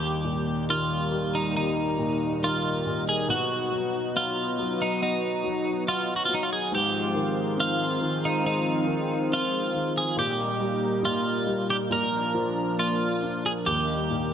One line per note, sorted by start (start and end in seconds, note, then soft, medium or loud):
0.00 3.24 D#2 medium
0.00 3.25 G3 medium
0.00 3.25 A#3 medium
0.00 6.68 D#4 medium
0.00 0.65 G4 medium
0.25 1.95 A#2 soft
0.69 1.54 D#3 soft
0.69 1.36 F4 medium
1.12 2.81 G3 soft
1.35 1.55 D#4 medium
1.56 2.41 D#3 soft
1.56 2.45 D#4 medium
1.98 2.85 A#2 soft
2.43 3.26 D#3 soft
2.43 3.04 F4 medium
2.86 3.28 A#2 soft
3.09 3.30 G#4 medium
3.27 6.68 B2 medium
3.27 6.69 F#3 medium
3.27 6.68 B3 medium
3.27 4.16 F#4 medium
3.72 4.58 F#3 soft
4.15 5.00 B3 soft
4.15 4.83 F4 medium
4.59 5.43 F#3 soft
4.82 5.01 D#4 medium
5.02 5.86 B3 soft
5.02 5.84 D#4 medium
5.44 6.28 F#3 soft
5.88 6.70 B3 soft
5.88 6.16 F4 medium
6.16 6.25 F#4 medium
6.25 6.71 F#3 soft
6.25 6.34 F4 medium
6.34 6.43 D#4 medium
6.43 6.51 F4 medium
6.53 6.74 G#4 medium
6.72 10.12 G#2 medium
6.72 10.13 D#3 medium
6.72 10.13 F3 medium
6.72 10.14 G#3 medium
6.72 10.13 C4 medium
6.72 10.13 F4 medium
6.72 7.60 G4 medium
7.15 7.99 D#3 soft
7.57 8.42 C4 soft
7.57 8.26 F4 medium
8.01 8.85 D#3 soft
8.25 8.45 D#4 medium
8.44 9.29 C4 soft
8.44 9.34 D#4 medium
8.87 9.72 D#3 soft
9.30 10.14 C4 soft
9.30 9.93 F4 medium
9.74 10.16 D#3 soft
9.98 10.17 G#4 medium
10.16 11.88 A#2 medium
10.16 11.02 A#2 medium
10.16 11.88 G3 medium
10.16 14.34 A#3 medium
10.16 11.88 D#4 medium
10.16 11.05 G4 medium
10.60 11.45 G3 soft
11.03 11.88 A#2 soft
11.03 11.70 F4 medium
11.47 11.89 G3 soft
11.70 11.76 G4 medium
11.90 13.61 A#2 soft
11.90 13.64 F3 medium
11.90 13.64 D4 medium
11.90 12.79 A#4 medium
12.35 13.62 F3 soft
12.78 13.63 A#3 soft
12.78 13.46 F4 medium
13.22 13.64 D4 soft
13.46 13.52 G#4 medium
13.64 14.34 D#2 medium
13.64 14.34 G3 medium
13.64 14.34 D#4 medium
13.64 14.34 G4 medium
14.10 14.34 A#2 soft